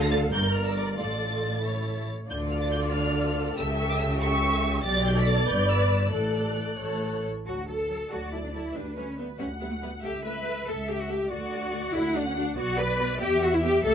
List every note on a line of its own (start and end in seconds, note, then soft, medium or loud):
0.00 0.28 D2 loud
0.00 0.29 D3 medium
0.00 0.28 A4 medium
0.00 0.32 A4 loud
0.00 0.28 F5 medium
0.00 0.06 A#6 loud
0.11 0.19 A6 loud
0.32 0.99 G1 medium
0.32 1.00 G2 medium
0.32 0.95 A#4 medium
0.32 0.99 A#4 medium
0.32 1.60 D5 medium
0.32 0.55 G6 loud
0.55 0.66 F6 loud
0.66 0.77 E6 medium
0.77 0.85 D6 medium
0.98 2.09 A1 medium
0.98 2.10 A2 medium
0.98 1.60 F4 medium
0.98 1.95 A4 medium
0.98 2.06 A6 medium
1.63 2.06 E4 medium
1.63 2.06 C#5 medium
2.28 3.54 D2 medium
2.28 3.54 D3 medium
2.28 3.54 F4 medium
2.28 4.80 A4 medium
2.28 3.54 D5 medium
2.28 2.39 G6 medium
2.52 2.57 F6 medium
2.62 2.66 A6 medium
2.72 2.80 G6 medium
2.93 3.57 F6 loud
3.57 4.82 C#2 medium
3.57 4.82 C#3 medium
3.57 4.80 G4 medium
3.57 4.20 E5 loud
3.57 3.66 E6 loud
3.80 3.90 C#6 medium
3.90 3.94 D6 loud
4.00 4.08 E6 loud
4.21 4.84 E5 loud
4.21 4.84 C#6 loud
4.83 5.45 B1 medium
4.83 5.46 B2 medium
4.83 5.14 G4 medium
4.83 5.45 D5 medium
4.83 6.12 D5 loud
4.83 5.06 A6 loud
5.06 5.17 G6 medium
5.16 5.49 A4 medium
5.16 5.28 B6 loud
5.28 5.50 A6 loud
5.48 6.15 G1 medium
5.48 6.15 G2 medium
5.48 6.14 B4 medium
5.48 6.13 D5 medium
5.48 5.71 G6 loud
5.71 5.82 E6 loud
5.81 5.92 F#6 medium
5.90 6.13 E6 medium
6.13 6.79 A1 medium
6.13 6.80 A2 medium
6.13 7.12 A4 medium
6.13 6.79 A4 medium
6.13 6.79 D5 medium
6.13 7.22 F#6 medium
6.80 7.26 A1 medium
6.80 7.26 A2 medium
6.80 7.26 A4 medium
6.80 7.26 C#5 medium
7.46 8.04 D2 soft
7.46 7.55 F#3 soft
7.46 7.67 F#4 medium
7.46 7.55 A4 soft
7.46 7.55 A5 soft
7.68 7.76 F#3 soft
7.68 7.76 A4 soft
7.68 8.11 A4 medium
7.68 7.76 A5 soft
7.89 7.97 F#3 soft
7.89 7.97 A4 soft
7.89 7.99 A5 soft
8.10 8.69 D2 medium
8.10 8.20 F#3 soft
8.10 8.33 F#4 medium
8.10 8.20 A4 soft
8.10 8.72 D5 soft
8.10 8.19 A5 soft
8.33 8.41 F#3 soft
8.33 8.37 E4 medium
8.33 8.41 A4 soft
8.33 8.42 A5 soft
8.44 8.49 D4 medium
8.54 8.62 F#3 soft
8.54 8.75 E4 medium
8.54 8.63 A4 soft
8.54 8.63 A5 soft
8.75 9.33 D2 medium
8.75 8.84 G3 soft
8.75 8.97 D4 medium
8.75 9.40 B4 soft
8.75 8.84 B4 soft
8.75 8.83 E5 soft
8.97 9.05 G3 soft
8.97 9.19 C#4 medium
8.97 9.05 B4 soft
8.97 9.05 E5 soft
9.18 9.26 G3 soft
9.18 9.26 B3 medium
9.18 9.27 B4 soft
9.18 9.26 E5 soft
9.39 9.97 D2 medium
9.39 9.47 G3 soft
9.39 9.47 C#4 medium
9.39 9.47 B4 soft
9.39 9.47 E5 soft
9.39 10.04 F#5 medium
9.61 9.69 G3 soft
9.61 9.65 B3 medium
9.61 9.69 B4 soft
9.61 9.69 E5 soft
9.71 9.76 A3 medium
9.82 9.90 G3 soft
9.82 9.90 B3 medium
9.82 9.90 B4 soft
9.82 9.91 E5 soft
10.03 10.61 C#2 medium
10.03 10.11 A3 soft
10.03 10.25 G4 medium
10.03 10.12 A4 medium
10.03 10.65 E5 soft
10.03 10.12 E5 soft
10.24 10.33 A3 soft
10.24 10.32 A4 soft
10.24 10.67 B4 medium
10.24 10.33 E5 soft
10.45 10.53 A3 soft
10.45 10.54 A4 soft
10.45 10.56 E5 soft
10.66 11.23 C#2 medium
10.66 10.75 A3 soft
10.66 10.76 A4 soft
10.66 10.89 A4 medium
10.66 11.29 E5 medium
10.66 10.77 E5 medium
10.87 10.96 A3 soft
10.87 11.00 G4 medium
10.87 10.95 A4 soft
10.87 10.97 E5 medium
11.00 11.10 F#4 medium
11.08 11.16 A3 soft
11.08 11.31 G4 medium
11.08 11.16 A4 medium
11.08 11.17 E5 soft
11.29 11.86 D2 medium
11.29 11.38 A3 medium
11.29 11.38 F#4 medium
11.29 11.93 F#4 medium
11.29 11.92 D5 medium
11.29 11.38 D5 medium
11.51 11.61 A3 medium
11.51 11.61 F#4 medium
11.51 11.59 D5 soft
11.71 11.80 A3 medium
11.71 11.81 F#4 medium
11.71 11.79 D5 medium
11.93 12.50 D2 medium
11.93 12.01 A3 medium
11.93 12.15 E4 medium
11.93 12.01 F#4 medium
11.93 12.01 D5 medium
11.93 12.57 F#5 medium
12.14 12.22 A3 medium
12.14 12.26 D4 medium
12.14 12.22 F#4 medium
12.14 12.23 D5 medium
12.27 12.37 C#4 medium
12.35 12.43 A3 medium
12.35 12.57 D4 medium
12.35 12.43 F#4 medium
12.35 12.43 D5 medium
12.56 13.13 B1 medium
12.56 12.64 B3 medium
12.56 12.64 F#4 medium
12.56 12.78 F#4 loud
12.56 13.19 D5 medium
12.56 12.65 D5 medium
12.77 12.86 B3 medium
12.77 12.85 F#4 medium
12.77 13.21 B4 loud
12.77 12.86 D5 medium
12.99 13.07 B3 medium
12.99 13.07 F#4 medium
12.99 13.09 D5 medium
13.20 13.77 E2 medium
13.20 13.28 B3 medium
13.20 13.28 G4 medium
13.20 13.42 G4 loud
13.20 13.83 E5 medium
13.20 13.30 E5 medium
13.42 13.50 B3 medium
13.42 13.53 F#4 loud
13.42 13.50 G4 medium
13.42 13.51 E5 medium
13.53 13.64 E4 loud
13.63 13.73 B3 medium
13.63 13.84 G4 loud
13.63 13.73 G4 medium
13.63 13.72 E5 medium
13.84 13.95 C#2 medium
13.84 13.93 A3 medium
13.84 13.94 G4 medium
13.84 13.95 A4 loud
13.84 13.95 E5 loud
13.84 13.93 E5 medium